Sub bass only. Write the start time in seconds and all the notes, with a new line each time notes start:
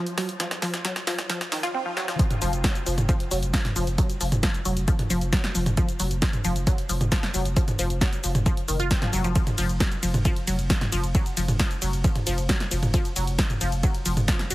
2.42 F1
2.53 F1
2.86 F1
2.98 F1
3.31 F1
3.42 F1
3.76 F1
3.87 F1
4.21 F1
4.32 F1
4.65 F1
4.77 F1
5.10 F1
5.21 F1
5.55 F1
5.66 F1
6.00 F1
6.11 F1
6.45 F1
6.56 F1
6.89 F1
7.00 F1
7.34 F1
7.45 F1
7.79 F1
7.90 F1
8.24 F1
8.35 F1
8.68 F1
8.80 F1
9.13 F1
9.24 F1
9.58 F1
9.69 F1
10.03 F1
10.14 F1
10.47 F1
10.59 F1
10.92 F1
11.04 F1
11.37 F1
11.49 F1
11.82 F1
11.93 F1
12.27 F1
12.38 F1
12.71 F1
12.83 F1
13.16 F1
13.28 F1
13.61 F1
13.72 F1
14.06 F1
14.17 F1
14.51 F1